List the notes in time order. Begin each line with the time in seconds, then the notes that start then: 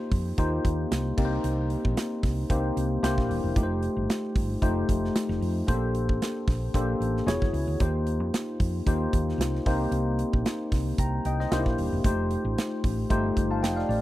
Already playing: A#3 D#4 F4 G4 C5
0.12 F2, kick, open hi-hat
0.38 D#2 A#3 D#4 F4 G4 C5, kick, closed hi-hat
0.65 D#2, kick, closed hi-hat
0.91 C2, snare, closed hi-hat
1.17 C2 A#3 C4 D#4 G4 A#4, kick, crash
1.25 C5
1.44 C2, closed hi-hat
1.70 closed hi-hat
1.85 A#1, kick
1.97 snare, closed hi-hat
2.23 C2, kick, snare, open hi-hat
2.50 C2 A#3 C4 D#4 G4 C5, kick, closed hi-hat
2.77 C2, closed hi-hat
3.03 C2 A#3 D4 E4 G4 C5, snare, closed hi-hat
3.18 A#1, kick, snare
3.29 D#1, open hi-hat
3.44 E1
3.56 F1 A3 D#4 F4 G4 A#4, kick, closed hi-hat
3.63 C5
3.83 closed hi-hat
3.97 G1
4.10 snare, closed hi-hat
4.35 G1, kick, open hi-hat
4.62 F1 A3 D#4 F4 G4 C5, kick, closed hi-hat
4.89 F1, kick, closed hi-hat
5.05 snare
5.16 snare, closed hi-hat
5.29 F1, snare
5.41 F2, open hi-hat
5.67 A#1 A#3 C#4 G4 A4 C5, kick, closed hi-hat
5.74 D4
5.95 closed hi-hat
6.09 A1, kick
6.22 snare, closed hi-hat
6.48 A#1, kick, snare, open hi-hat
6.74 A#1 A#3 D4 G4 A4 C5, kick, closed hi-hat
7.00 A1, closed hi-hat
7.17 snare
7.26 E1 B3 E4 F#4 G#4 C#5, snare, closed hi-hat
7.42 F#1, kick, snare
7.53 C#2, open hi-hat
7.67 D2
7.80 D#2 A#3 D#4 F4 G4 C5, kick, closed hi-hat
8.07 closed hi-hat
8.20 F2
8.34 snare, closed hi-hat
8.60 F2, kick, open hi-hat
8.86 D#2 A#3 D#4 F4 G4 C5, kick, closed hi-hat
9.13 D#2, kick, closed hi-hat
9.29 snare
9.38 C2, snare, closed hi-hat
9.55 snare
9.66 C2 A#3 C4 D#4 G4 C5, kick, open hi-hat
9.91 C2, closed hi-hat
10.19 closed hi-hat
10.33 A#1, kick
10.46 snare, closed hi-hat
10.72 C2, kick, snare, open hi-hat
10.98 C2 G5 A#5, kick, closed hi-hat
11.25 C2 D#5 G5, closed hi-hat
11.40 C5 D#5, snare
11.52 C2 A#3 D4 D#4 G4 C5, snare, closed hi-hat
11.59 E4
11.66 A#1, kick, snare
11.78 D#1, open hi-hat
11.93 E1
12.04 F1 A3 D#4 F4 G4 C5, kick, closed hi-hat
12.31 closed hi-hat
12.45 A1
12.58 snare, closed hi-hat
12.84 A1, kick, open hi-hat
13.10 G1 A3 D#4 F4 G4 C5, kick, closed hi-hat
13.36 G1, kick, closed hi-hat
13.51 F5 A5
13.62 F1 D#5 G5, snare, closed hi-hat
13.76 D5 F5, snare
13.89 A1 D5, open hi-hat